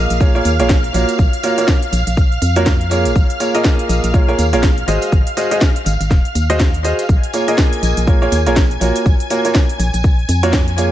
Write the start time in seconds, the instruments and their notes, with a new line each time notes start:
Already playing: grand piano A#3 F4 G#4 A#4 D#5, analog synth pad F5 F6
0.10 fm bass A#1, closed hi-hat, tambourine, shaker
0.21 grand piano A#3 F4 G#4 A#4 C#5, kick, tambourine, shaker
0.35 grand piano A#3 F4 G#4 A#4 C#5, shaker
0.45 fm bass D#2, open hi-hat, tambourine, shaker
0.59 fm bass A#1, grand piano A#3 F4 G#4 A#4 C#5, closed hi-hat, tambourine, shaker
0.69 kick, snare, tambourine, shaker
0.84 closed hi-hat
0.94 fm bass A#1, grand piano A#3 F4 F#4 A#4 C#5, open hi-hat, tambourine, shaker
1.09 closed hi-hat, tambourine, shaker
1.19 fm bass A#1, kick, tambourine, shaker
1.33 closed hi-hat
1.43 grand piano A#3 F4 F#4 A#4 C#5, open hi-hat, tambourine, shaker
1.58 grand piano A#3 F4 F#4 A#4 C#5, closed hi-hat, tambourine, shaker
1.68 kick, snare, tambourine, shaker
1.83 closed hi-hat, shaker
1.93 fm bass A#1, open hi-hat, tambourine, shaker
2.07 fm bass A#1, closed hi-hat, tambourine, shaker
2.17 kick, tambourine, shaker
2.32 shaker
2.42 fm bass F2, open hi-hat, tambourine, shaker
2.56 grand piano A#3 F4 F#4 A#4 C#5, closed hi-hat, tambourine, shaker
2.66 kick, snare, shaker
2.81 closed hi-hat
2.91 grand piano A#3 F4 G#4 A#4 C#5, open hi-hat, tambourine, shaker
3.05 fm bass A#1, closed hi-hat, tambourine, shaker
3.15 fm bass A#1, kick, tambourine, shaker
3.30 closed hi-hat
3.40 grand piano A#3 F4 G#4 A#4 C#5, open hi-hat, tambourine, shaker
3.54 grand piano A#3 F4 G#4 A#4 D#5, closed hi-hat, tambourine, shaker
3.64 kick, snare, shaker
3.79 closed hi-hat, shaker
3.89 fm bass A#1, open hi-hat, tambourine, shaker
4.04 fm bass A#1, closed hi-hat, tambourine, shaker
4.14 grand piano A#3 F4 G#4 A#4 C#5, kick, tambourine, shaker
4.28 grand piano A#3 F4 G#4 A#4 C#5, shaker
4.39 fm bass D#2, open hi-hat, tambourine, shaker
4.53 fm bass A#1, grand piano A#3 F4 G#4 A#4 C#5, closed hi-hat, tambourine, shaker
4.63 kick, snare, tambourine, shaker
4.78 closed hi-hat
4.88 fm bass G#1, grand piano G#3 F#4 G#4 C5 D#5, open hi-hat, tambourine, shaker
5.02 closed hi-hat, tambourine, shaker
5.12 fm bass G#1, kick, tambourine, shaker
5.27 closed hi-hat, shaker
5.37 grand piano G#3 F#4 G#4 C5 D#5, open hi-hat, tambourine, shaker
5.51 grand piano G#3 F#4 G#4 C5 D#5, closed hi-hat, tambourine, shaker
5.61 kick, snare, tambourine, shaker
5.76 closed hi-hat, shaker
5.86 fm bass G#1, open hi-hat, tambourine, shaker
6.01 fm bass G#1, closed hi-hat, tambourine, shaker
6.10 kick, snare, tambourine, shaker
6.25 closed hi-hat, shaker
6.35 fm bass D#2, open hi-hat, tambourine, shaker
6.50 grand piano G#3 F#4 G#4 C5 D#5, closed hi-hat, tambourine, shaker
6.60 kick, snare, tambourine, shaker
6.74 closed hi-hat, shaker
6.84 grand piano F#4 G#4 C5 D#5, open hi-hat, tambourine, shaker
6.99 closed hi-hat, tambourine, shaker
7.09 fm bass A#1, analog synth pad G#5 G#6, kick, tambourine, shaker
7.23 closed hi-hat
7.33 grand piano A#3 F4 G#4 A#4 C#5, open hi-hat, tambourine, shaker
7.48 grand piano A#3 F4 G#4 A#4 D#5, closed hi-hat, tambourine, shaker
7.58 kick, snare, tambourine, shaker
7.73 closed hi-hat, shaker
7.83 fm bass A#1, open hi-hat, tambourine, shaker
7.97 fm bass A#1, closed hi-hat, tambourine, shaker
8.07 grand piano A#3 F4 G#4 A#4 C#5, kick, tambourine, shaker
8.22 grand piano A#3 F4 G#4 A#4 C#5, shaker
8.32 fm bass D#2, open hi-hat, tambourine, shaker
8.46 fm bass A#1, grand piano A#3 F4 G#4 A#4 C#5, closed hi-hat, tambourine, shaker
8.56 kick, snare, tambourine, shaker
8.71 closed hi-hat
8.81 fm bass A#1, grand piano A#3 F4 F#4 A#4 C#5, open hi-hat, tambourine, shaker
8.95 closed hi-hat, tambourine, shaker
9.06 fm bass A#1, kick, tambourine, shaker
9.20 closed hi-hat
9.30 grand piano A#3 F4 F#4 A#4 C#5, open hi-hat, tambourine, shaker
9.45 grand piano A#3 F4 F#4 A#4 C#5, closed hi-hat, tambourine, shaker
9.55 kick, snare, tambourine, shaker
9.69 closed hi-hat, shaker
9.80 fm bass A#1, open hi-hat, tambourine, shaker
9.93 fm bass A#1, closed hi-hat, tambourine, shaker
10.04 kick, tambourine, shaker
10.19 shaker
10.29 fm bass F2, open hi-hat, tambourine, shaker
10.43 grand piano A#3 F4 F#4 A#4 C#5, closed hi-hat, tambourine, shaker
10.53 kick, snare, tambourine, shaker
10.68 closed hi-hat
10.78 grand piano A#3 F4 G#4 A#4 C#5, open hi-hat, tambourine, shaker